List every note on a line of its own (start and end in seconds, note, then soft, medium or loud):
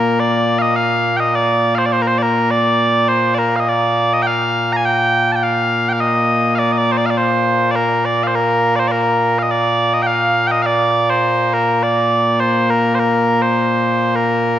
0.00 14.59 A#2 medium
0.00 14.59 A#3 medium
0.00 0.20 A#4 medium
0.20 0.59 D5 medium
0.59 0.76 D#5 loud
0.59 0.62 F5 loud
0.76 1.17 F5 loud
1.17 1.35 D#5 medium
1.17 1.20 G5 medium
1.35 1.75 D5 medium
1.75 1.86 C5 medium
1.75 1.78 F5 medium
1.86 1.93 D5 medium
1.93 2.02 C5 loud
2.02 2.07 A#4 medium
2.07 2.18 C5 loud
2.18 2.23 D5 medium
2.23 2.51 A#4 medium
2.51 3.09 D5 loud
3.09 3.35 C5 medium
3.35 3.56 A#4 medium
3.35 3.38 D5 medium
3.56 3.68 D#5 medium
3.56 3.60 F5 medium
3.68 4.13 D5 medium
4.13 4.22 D#5 medium
4.22 4.27 G5 loud
4.27 4.73 F5 loud
4.73 4.77 A#5 medium
4.77 4.85 G#5 medium
4.85 5.32 G5 loud
5.32 5.43 G5 medium
5.32 5.36 A5 medium
5.43 5.89 F5 loud
5.89 6.01 F5 medium
5.89 5.93 G5 medium
6.01 6.55 D#5 medium
6.55 6.72 D5 medium
6.55 6.59 F5 medium
6.72 6.77 D#5 medium
6.77 6.92 D5 loud
6.92 6.98 C5 medium
6.98 7.06 D5 loud
7.06 7.10 F5 medium
7.10 7.18 D5 medium
7.18 7.71 C5 medium
7.71 7.76 D5 medium
7.76 8.05 A#4 medium
8.05 8.24 D5 medium
8.24 8.35 C5 medium
8.24 8.27 F5 medium
8.35 8.76 A#4 medium
8.76 8.88 C5 medium
8.76 8.80 D5 medium
8.88 9.39 A#4 medium
8.88 8.92 D5 medium
9.39 9.43 F5 medium
9.43 9.51 D#5 medium
9.51 9.93 D5 medium
9.93 10.03 D#5 medium
10.03 10.07 G5 loud
10.07 10.47 F5 loud
10.47 10.51 G5 loud
10.51 10.63 D#5 loud
10.63 11.10 D5 loud
10.63 10.66 F5 loud
11.10 11.53 C5 loud
11.53 11.83 A#4 medium
11.83 12.40 D5 medium
12.40 12.70 C5 medium
12.70 12.95 A#4 medium
12.95 12.99 C5 medium
12.99 13.42 A#4 medium
13.42 14.15 C5 medium
14.15 14.59 A#4 medium